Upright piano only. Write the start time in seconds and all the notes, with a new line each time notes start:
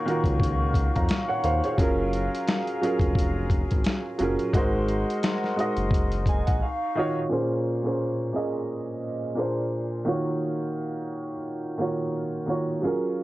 Already playing: D#3 A#3 F4 F#4 C#5
0.05 D#3 A#3 F4 F#4 A#4
0.96 F5 A#5
1.29 C#5 F#5
1.44 C5 F5
1.65 G#4 C#5
1.78 F#3 C#4 F4 G#4 A#4
2.81 F#3 C#4 F4 G#4 A#4
4.18 F#3 C#4 F4 G#4 A#4
4.53 G#3 D#4 F#4 A#4 C5
5.56 G#3 D#4 F#4 A#4
5.60 D#5
6.29 G#5
6.46 F#5
6.62 F5
6.95 D#3 D#4 F4 F#4 C#5 D#5
7.29 A#2 A#3 C#4 G#4 C5
7.83 A#2 A#3 C#4 G#4 C5
8.33 A#2 A#3 C#4 G#4 D#5
9.35 A#2 A#3 D4 G#4
9.39 C5
10.05 D#3 A#3 F4 F#4 C#5
11.78 D#3 A#3 F4 F#4
11.82 C#5
12.46 D#3 A#3 F4 F#4 C#5
12.82 F#3 C#4 F4 G#4 A#4